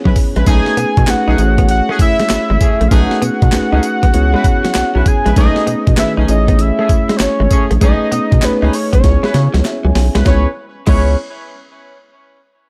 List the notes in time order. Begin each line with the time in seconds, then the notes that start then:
Already playing: B3 C#4 E4 G#4 C#5 D#5
0.05 B1 F#3 C#4 E4 B4, kick
0.16 muted clean electric guitar stroke, kick, open hi-hat, tambourine
0.36 A#1 G#3 C#4 E4 B4, closed hi-hat
0.46 B1 G#3 A3 C#4 D#4 G#4 B4 G#5, kick, closed hi-hat, tambourine
0.66 snare
0.77 B2 B3, closed hi-hat, tambourine
0.97 B2, muted clean electric guitar stroke, kick, closed hi-hat
1.07 B1 A3 C#4 D#4 G#4 B4 F#5, snare, clap, closed hi-hat, tambourine
1.28 B1 A3 C#4 D#4 G#4
1.38 A1 A3 C#4 E4 G#4 C5, muted clean electric guitar stroke, closed hi-hat, tambourine
1.46 C#5
1.58 B3, kick, closed hi-hat
1.69 F#5, closed hi-hat
1.89 A3 C#4 G#4
1.99 E5, muted clean electric guitar stroke, kick, closed hi-hat, tambourine
2.19 G#3, snare, closed hi-hat
2.29 G#1, snare, clap, closed hi-hat, tambourine
2.50 G#1 G#3
2.60 A3 C#4 G#4, muted clean electric guitar stroke, kick, closed hi-hat, tambourine
2.81 A#1 A3, closed hi-hat
2.88 B1 G#3 A3 C#4 D#4 G#4 F5, kick, closed hi-hat, tambourine
2.92 B4 F#5
3.11 snare
3.22 B2 B3, closed hi-hat, tambourine
3.42 B2, muted clean electric guitar stroke, kick, closed hi-hat
3.52 C#2 A3 C#4 D#4 G#4 B4, snare, clap, closed hi-hat, tambourine
3.72 C#2 A3 C#4 D#4 G#4
3.83 muted clean electric guitar stroke, closed hi-hat, tambourine
4.03 B1 B3, kick, closed hi-hat
4.13 C#2 B3 C#4 E4 G#4 C#5, closed hi-hat
4.34 G#3 C#4 E4 B4
4.44 muted clean electric guitar stroke, kick, closed hi-hat, tambourine
4.64 F#3, snare, closed hi-hat
4.75 B1, snare, clap, closed hi-hat, tambourine
4.95 B1 F#3 C#4 E4 B4
5.06 G#5, muted clean electric guitar stroke, kick, closed hi-hat, tambourine
5.26 A#1 G#3 C#4 E4 B4, closed hi-hat
5.36 B1 G#3 A3 C#4 D#4 G#4 B4 D#5, kick, closed hi-hat, tambourine
5.56 snare
5.67 B2 B3, closed hi-hat, tambourine
5.87 B2, muted clean electric guitar stroke, kick, closed hi-hat
5.97 B1 D#3 A3 C#4 G#4 B4 E5, snare, clap, closed hi-hat, tambourine
6.17 B1 A3 C#4 D#4 G#4
6.28 A1 A3 C#4 E4 G#4 C#5 D#5, muted clean electric guitar stroke, closed hi-hat, tambourine
6.48 B3, kick, closed hi-hat
6.59 E5, closed hi-hat
6.79 A3 C#4 G#4
6.89 muted clean electric guitar stroke, kick, closed hi-hat, tambourine
7.09 G#3, snare, closed hi-hat
7.17 G#1 C5, snare, clap, closed hi-hat, tambourine
7.22 C#5
7.40 G#1 G#3
7.50 A3 C#4 G#4 C#5, muted clean electric guitar stroke, kick, closed hi-hat, tambourine
7.71 A#1 A3, closed hi-hat
7.81 B1 G#3 A3 C#4 D#4 G#4 B4 D#5, kick, closed hi-hat, tambourine
8.12 B2 B3, closed hi-hat, tambourine
8.32 B2, muted clean electric guitar stroke, kick, closed hi-hat
8.42 C#2 A3 C#4 D#4 G#4 B4 C#5, snare, clap, closed hi-hat, tambourine
8.62 C#2 A3 C#4 D#4 G#4
8.73 C#5, muted clean electric guitar stroke, open hi-hat, tambourine
8.93 B1 B3 C#5, kick, closed hi-hat
9.03 C#2 B3 C#4 E4 G#4 C#5, kick, snare, closed hi-hat
9.23 G#3 C#4 E4 B4, snare
9.34 C#3, muted clean electric guitar stroke, snare, closed hi-hat
9.54 C#2 F#3, snare, closed hi-hat
9.65 E5, snare, clap, closed hi-hat
9.85 C#2 F#3 G#5
9.95 B1, muted clean electric guitar stroke, snare, open hi-hat
10.15 C2 G#3 C#4 E4 B4, snare, closed hi-hat
10.25 C#2 G#3 B3 C#4 E4 G#4 B4 C#5, kick, snare, clap
10.87 C#2 G#3 B3 C#4 E4 G#4 B4 C#5, kick, clap, crash